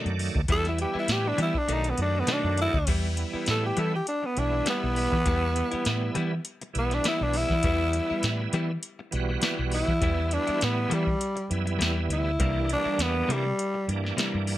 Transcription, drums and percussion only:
0.06 closed hi-hat soft
0.19 open hi-hat medium
0.35 kick medium
0.48 kick loud
0.48 closed hi-hat medium
0.65 snare soft
0.65 closed hi-hat soft
0.78 closed hi-hat medium
1.08 snare loud
1.08 closed hi-hat medium
1.38 closed hi-hat medium
1.55 kick medium
1.69 closed hi-hat medium
1.84 closed hi-hat soft
1.98 closed hi-hat medium
2.27 snare loud
2.27 closed hi-hat medium
2.58 closed hi-hat medium
2.74 kick medium
2.87 kick loud
2.87 closed hi-hat medium
2.87 crash medium
3.17 closed hi-hat medium
3.46 snare medium
3.46 closed hi-hat medium
3.77 closed hi-hat medium
4.07 closed hi-hat medium
4.37 closed hi-hat medium
4.66 snare loud
4.66 closed hi-hat medium
4.96 open hi-hat medium
5.12 kick medium
5.26 kick loud
5.26 closed hi-hat medium
5.56 closed hi-hat medium
5.72 closed hi-hat soft
5.85 snare loud
5.85 closed hi-hat medium
6.15 closed hi-hat medium
6.45 closed hi-hat medium
6.62 closed hi-hat soft
6.75 closed hi-hat medium
6.91 snare soft
6.91 closed hi-hat soft
7.04 snare loud
7.04 closed hi-hat loud
7.33 open hi-hat medium
7.50 kick medium
7.50 snare soft
7.63 kick loud
7.63 closed hi-hat medium
7.93 closed hi-hat medium
8.23 snare loud
8.23 closed hi-hat medium
8.53 closed hi-hat medium
8.83 closed hi-hat medium
9.12 closed hi-hat medium
9.42 snare loud
9.42 closed hi-hat medium
9.72 open hi-hat medium
9.88 kick medium
10.02 kick loud
10.02 closed hi-hat medium
10.31 closed hi-hat medium
10.47 closed hi-hat soft
10.61 snare loud
10.61 closed hi-hat medium
10.91 closed hi-hat medium
11.07 kick medium
11.21 closed hi-hat medium
11.37 closed hi-hat soft
11.51 closed hi-hat medium
11.67 closed hi-hat soft
11.81 snare loud
11.81 closed hi-hat medium
12.10 closed hi-hat medium
12.40 kick loud
12.40 closed hi-hat medium
12.69 closed hi-hat medium
12.99 snare medium
12.99 closed hi-hat medium
13.30 closed hi-hat medium
13.59 closed hi-hat medium
13.89 closed hi-hat medium
14.06 snare soft
14.18 snare loud
14.18 closed hi-hat medium
14.47 open hi-hat medium

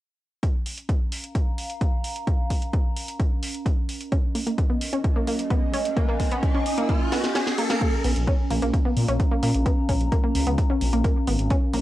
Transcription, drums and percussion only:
0.43 kick loud
0.43 closed hi-hat medium
0.66 open hi-hat loud
0.78 closed hi-hat medium
0.89 kick loud
0.89 closed hi-hat medium
1.12 open hi-hat loud
1.24 closed hi-hat medium
1.35 kick loud
1.35 closed hi-hat medium
1.58 open hi-hat loud
1.70 closed hi-hat medium
1.81 kick loud
1.81 closed hi-hat medium
2.04 open hi-hat loud
2.16 closed hi-hat medium
2.27 kick loud
2.27 closed hi-hat medium
2.50 kick medium
2.50 open hi-hat loud
2.62 closed hi-hat medium
2.73 kick loud
2.73 closed hi-hat medium
2.97 open hi-hat loud
3.08 closed hi-hat medium
3.20 kick loud
3.20 closed hi-hat medium
3.43 open hi-hat loud
3.55 closed hi-hat medium
3.66 kick loud
3.66 closed hi-hat medium
3.89 open hi-hat loud
4.01 closed hi-hat medium
4.12 kick loud
4.12 closed hi-hat medium
4.35 open hi-hat loud
4.47 closed hi-hat medium
4.58 kick loud
4.58 closed hi-hat medium
4.81 open hi-hat loud
4.93 closed hi-hat medium
5.04 kick loud
5.04 closed hi-hat medium
5.27 open hi-hat loud
5.39 closed hi-hat medium
5.50 kick loud
5.50 closed hi-hat medium
5.74 open hi-hat loud
5.85 closed hi-hat medium
5.97 kick loud
5.97 closed hi-hat medium
6.20 kick medium
6.20 open hi-hat loud
6.31 closed hi-hat medium
6.43 kick loud
6.43 closed hi-hat medium
6.66 open hi-hat loud
6.78 closed hi-hat medium
6.89 kick loud
6.89 closed hi-hat medium
7.12 snare medium
7.12 open hi-hat loud
7.24 snare medium
7.24 closed hi-hat medium
7.35 snare medium
7.35 closed hi-hat medium
7.47 snare medium
7.58 open hi-hat loud
7.70 snare medium
7.70 closed hi-hat medium
7.81 kick loud
7.81 closed hi-hat medium
7.81 crash medium
8.04 open hi-hat loud
8.16 closed hi-hat medium
8.27 kick loud
8.27 closed hi-hat medium
8.50 open hi-hat loud
8.62 closed hi-hat medium
8.74 kick loud
8.74 closed hi-hat medium
8.97 open hi-hat loud
9.08 closed hi-hat medium
9.20 kick loud
9.20 closed hi-hat medium
9.43 open hi-hat loud
9.54 closed hi-hat medium
9.66 kick loud
9.66 closed hi-hat medium
9.89 kick medium
9.89 open hi-hat loud
10.01 closed hi-hat medium
10.12 kick loud
10.12 closed hi-hat medium
10.35 open hi-hat loud
10.47 closed hi-hat medium
10.58 kick loud
10.58 closed hi-hat medium
10.81 open hi-hat loud
10.93 closed hi-hat medium
11.04 kick loud
11.04 closed hi-hat medium
11.27 open hi-hat loud
11.39 closed hi-hat medium
11.50 kick loud
11.50 closed hi-hat medium
11.73 open hi-hat loud

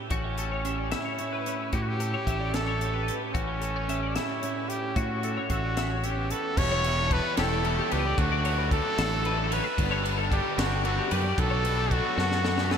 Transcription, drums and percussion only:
0.10 kick medium
0.10 closed hi-hat medium
0.38 closed hi-hat soft
0.65 closed hi-hat soft
0.92 snare medium
0.92 closed hi-hat medium
1.19 closed hi-hat medium
1.46 closed hi-hat medium
1.73 kick medium
1.73 closed hi-hat medium
2.00 closed hi-hat soft
2.27 kick medium
2.27 closed hi-hat medium
2.54 snare loud
2.54 closed hi-hat medium
2.81 closed hi-hat medium
3.08 closed hi-hat medium
3.35 kick medium
3.35 closed hi-hat medium
3.62 closed hi-hat soft
3.89 closed hi-hat medium
4.16 snare loud
4.16 closed hi-hat medium
4.43 closed hi-hat medium
4.70 closed hi-hat medium
4.96 kick medium
4.96 closed hi-hat medium
5.23 closed hi-hat medium
5.50 kick medium
5.50 closed hi-hat medium
5.77 snare medium
5.77 closed hi-hat medium
6.04 closed hi-hat medium
6.31 closed hi-hat medium
6.57 kick loud
6.57 crash loud
6.84 ride medium
7.11 kick medium
7.11 ride medium
7.37 snare loud
7.37 ride loud
7.64 ride medium
7.91 ride medium
8.18 kick loud
8.18 ride medium
8.45 ride medium
8.71 kick medium
8.71 ride medium
8.98 snare loud
8.98 ride loud
9.25 ride medium
9.52 ride medium
9.78 kick loud
9.78 ride loud
10.05 ride medium
10.32 kick medium
10.32 ride medium
10.59 snare loud
10.59 ride loud
10.85 ride medium
11.11 ride medium
11.38 kick loud
11.38 ride loud
11.65 ride medium
11.91 kick medium
11.91 ride medium
12.18 snare medium
12.32 snare medium
12.45 snare medium
12.58 snare medium
12.71 snare loud

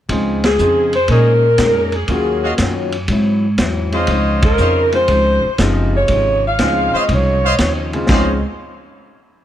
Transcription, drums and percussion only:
0.09 kick soft
0.09 ride medium
0.44 snare medium
0.44 ride medium
0.59 hi-hat pedal soft
0.93 ride soft
1.08 kick soft
1.08 ride medium
1.58 kick soft
1.58 snare medium
1.58 hi-hat pedal medium
1.58 ride medium
1.92 ride soft
2.08 kick soft
2.08 ride medium
2.58 kick soft
2.58 snare medium
2.58 hi-hat pedal medium
2.58 ride medium
2.92 ride soft
3.08 kick soft
3.08 ride medium
3.58 kick soft
3.58 snare medium
3.58 hi-hat pedal medium
3.58 ride medium
3.92 ride soft
4.07 kick soft
4.07 ride medium
4.42 kick medium
4.42 ride medium
4.57 hi-hat pedal soft
4.92 ride soft
5.08 kick soft
5.08 ride medium
5.58 kick soft
5.58 snare medium
5.58 hi-hat pedal medium
5.58 ride medium
6.08 kick soft
6.08 ride medium
6.59 kick soft
6.59 snare medium
6.59 hi-hat pedal medium
6.59 ride medium
7.09 kick soft
7.09 ride medium
7.58 kick soft
7.58 snare medium
7.58 hi-hat pedal medium
7.58 ride medium
7.93 ride soft
8.09 kick medium
8.09 snare medium
8.09 splash medium

